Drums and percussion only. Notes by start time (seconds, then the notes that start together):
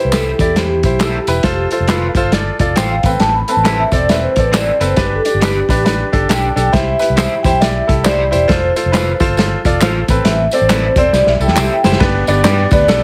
0.12 snare, clap, closed hi-hat, tambourine
0.39 kick, closed hi-hat, tambourine
0.56 snare, closed hi-hat, tambourine
0.83 kick, closed hi-hat, tambourine
0.99 snare, clap, closed hi-hat, tambourine
1.27 closed hi-hat, tambourine
1.43 kick, snare, closed hi-hat, tambourine
1.71 closed hi-hat, tambourine
1.88 snare, clap, closed hi-hat, tambourine
2.15 kick, closed hi-hat, tambourine
2.32 snare, closed hi-hat, tambourine
2.59 kick, closed hi-hat, tambourine
2.76 snare, clap, closed hi-hat, tambourine
3.03 kick, closed hi-hat, tambourine
3.20 snare, closed hi-hat, tambourine
3.48 closed hi-hat, tambourine
3.65 snare, clap, closed hi-hat, tambourine
3.92 kick, closed hi-hat, tambourine
4.09 snare, closed hi-hat, tambourine
4.36 kick, closed hi-hat, tambourine
4.53 snare, clap, closed hi-hat, tambourine
4.81 closed hi-hat, tambourine
4.96 kick, snare, closed hi-hat, tambourine
5.25 closed hi-hat, tambourine
5.41 snare, clap, closed hi-hat, tambourine
5.69 kick, closed hi-hat, tambourine
5.86 snare, closed hi-hat, tambourine
6.13 kick, closed hi-hat
6.29 snare, clap, closed hi-hat, tambourine
6.57 closed hi-hat, tambourine
6.73 kick, snare, closed hi-hat, tambourine
6.99 closed hi-hat, tambourine
7.17 snare, clap, closed hi-hat, tambourine
7.44 kick, closed hi-hat, tambourine
7.61 snare, closed hi-hat, tambourine
7.89 kick, closed hi-hat
8.05 snare, clap, closed hi-hat, tambourine
8.33 closed hi-hat, tambourine
8.49 kick, snare, closed hi-hat
8.76 closed hi-hat, tambourine
8.93 snare, clap, closed hi-hat, tambourine
9.20 kick, closed hi-hat, tambourine
9.37 snare, closed hi-hat, tambourine
9.65 kick, closed hi-hat, tambourine
9.81 snare, clap, closed hi-hat, tambourine
10.08 kick, closed hi-hat, tambourine
10.25 snare, closed hi-hat, tambourine
10.51 closed hi-hat, tambourine
10.69 snare, clap, closed hi-hat, tambourine
10.96 kick, closed hi-hat, tambourine
11.13 snare, tambourine
11.27 snare
11.41 tambourine
11.48 snare
11.56 snare, clap, tambourine
11.84 snare, tambourine
11.92 snare
12.00 kick, snare, ride
12.27 ride, tambourine
12.44 snare, clap, ride, tambourine
12.71 kick, ride, tambourine
12.88 snare, ride, tambourine